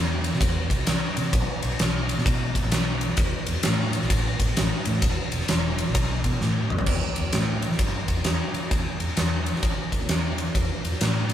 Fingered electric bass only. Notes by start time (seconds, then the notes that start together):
Already playing: E2
0.35 C3
0.42 E2
0.71 C2
0.88 C2
1.17 C3
1.34 B1
1.64 B1
1.80 B1
2.18 B2
2.26 B2
2.65 B1
3.18 E2
3.49 E2
3.66 A2
4.03 B1
4.11 A1
4.40 A1
4.58 A1
4.87 A2
5.03 E1
5.34 E1
5.50 E1
5.89 A#1
5.95 B1
6.24 B2
6.42 A2
6.72 F#2
6.88 E2
7.18 E2
7.33 A2
7.72 E3
7.80 G2
8.09 E2
8.25 E2
8.54 E3
8.72 E2
9.00 E2
9.17 E2
9.53 E3
9.63 E3
10.01 E2
10.56 E2
10.85 E2
11.01 A2